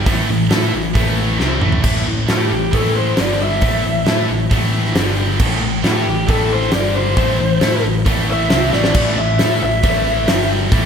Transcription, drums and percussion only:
0.06 kick loud
0.06 open hi-hat medium
0.51 snare loud
0.51 open hi-hat medium
0.95 kick medium
0.95 open hi-hat medium
1.40 snare medium
1.61 mid tom medium
1.72 floor tom loud
1.84 kick loud
1.84 crash loud
2.28 snare medium
2.28 open hi-hat soft
2.73 kick medium
2.73 open hi-hat medium
3.17 snare loud
3.17 open hi-hat medium
3.61 kick loud
3.61 open hi-hat medium
4.06 snare loud
4.06 open hi-hat soft
4.51 kick medium
4.51 open hi-hat medium
4.85 snare soft
4.95 snare loud
4.95 open hi-hat medium
5.39 kick loud
5.39 crash loud
5.84 snare medium
5.84 open hi-hat medium
6.28 kick medium
6.28 open hi-hat medium
6.62 snare soft
6.72 snare loud
6.72 open hi-hat medium
7.17 kick loud
7.17 open hi-hat medium
7.61 snare loud
7.61 open hi-hat medium
8.06 kick medium
8.06 open hi-hat medium
8.50 snare loud
8.50 open hi-hat medium
8.73 snare medium
8.84 snare loud
8.94 kick loud
8.94 crash medium
8.94 splash medium
9.39 snare loud
9.39 open hi-hat medium
9.83 kick loud
9.83 open hi-hat medium
10.28 snare loud
10.28 open hi-hat medium
10.72 kick loud
10.72 open hi-hat medium

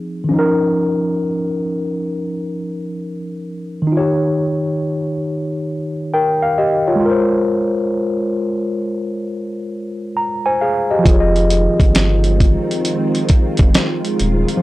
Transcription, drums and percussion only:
11.06 kick loud
11.06 closed hi-hat medium
11.36 closed hi-hat soft
11.50 closed hi-hat medium
11.80 kick medium
11.80 closed hi-hat soft
11.95 snare loud
11.95 closed hi-hat medium
12.24 closed hi-hat medium
12.40 kick medium
12.40 closed hi-hat medium
12.71 closed hi-hat medium
12.85 closed hi-hat medium
13.15 closed hi-hat soft
13.29 kick loud
13.29 closed hi-hat medium
13.57 kick loud
13.57 closed hi-hat medium
13.74 snare loud
13.74 closed hi-hat medium
14.05 closed hi-hat soft
14.20 closed hi-hat medium
14.48 closed hi-hat soft

